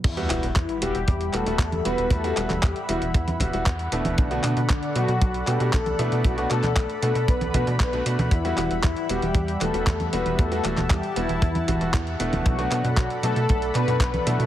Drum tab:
CC |x---------------|----------------|----------------|----------------|
HH |xxxxxxxxxxxxxxxx|xxxxxxxxxxxxxxxx|xxxxxxxxxxxxxxxx|xxxxxxxxxxxxxxxx|
CP |--x-x-----x-x---|--xxx-------x---|--x-x-----x-x---|--xxx-------x---|
CG |-------------o--|---o-----oo----o|-------------o--|---o-----oo----o|
BD |o---o---o---o---|o---o---o-o-o---|o---o---o---o---|o---o---o-o-o---|

CC |----------------|----------------|----------------|
HH |xxxxxxxxxxxxxxxx|xxxxxxxxxxxxxxxx|xxxxxxxxxxxxxxxx|
CP |--x-x-----x-x---|--xxx-------x---|--x-x-----x-x---|
CG |-------------o--|---o-----oo----o|-------------o--|
BD |o---o---o---o---|o---o---o-o-o---|o---o---o---o---|